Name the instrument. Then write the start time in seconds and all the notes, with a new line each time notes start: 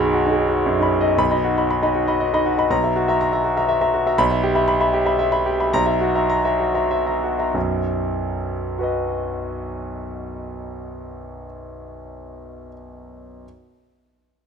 grand piano
Already playing: B1 D#4 F#4 G#4 B5
0.13 F#4
0.26 D#4
0.30 G#4
0.48 F#4
0.66 F#2
0.79 D#4 B5
1.01 D#5
1.18 B1 B5
1.31 D#4 D#5 B5
1.44 F#4
1.57 D#5 B5
1.71 B5
1.82 D#4 D#5 B5
1.95 F#4
2.08 D#5 B5
2.20 D#5
2.34 D#4 D#5 B5
2.46 F#4
2.58 D#5 B5
2.70 B1 A#5
2.84 E5 A#5
2.96 F#4
3.08 E5 A#5
3.21 A#5
3.32 E5 A#5
3.44 F#4
3.57 E5 A#5
3.68 E5
3.81 E5 A#5
3.94 F#4
4.07 E5 A#5
4.18 B1 B5
4.31 E5 B5
4.43 G4
4.55 E5 B5
4.68 B5
4.81 E5 B5
4.93 G4
5.06 E5 B5
5.19 E5
5.32 E5 B5
5.46 G4
5.60 E5 B5
5.73 B1 A#5
5.86 E5 A#5
6.01 F#4
6.15 E5 A#5
6.30 A#5
6.45 E5 A#5
6.60 F#4
6.74 E5 A#5
6.91 E5
7.06 E5 A#5
7.23 F#4
7.39 E5 A#5
7.54 B1 F#2
8.79 F#4 B4
8.83 D#5